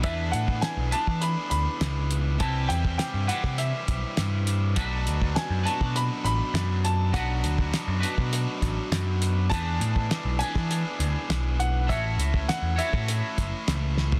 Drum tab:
HH |x-x-x-x-x-x-x-x-|x-x-x-x-x-x-x-x-|x-x-x-x-x-x-x-x-|x-x-x-x-x-x-x-x-|
SD |----o-------o---|----o--o----o---|----o-------o---|----o-------o---|
FT |----------------|----------------|----------------|----------------|
BD |o--o---o--------|o--o---o--o-----|o--o---o--------|o--o---o--o-----|

HH |x-x-x-x-x-x-x-x-|x-x-x-x-x-x-x---|
SD |----o--o----o---|----o-------o-o-|
FT |----------------|---------------o|
BD |o--o---o--------|o--o---o--o-----|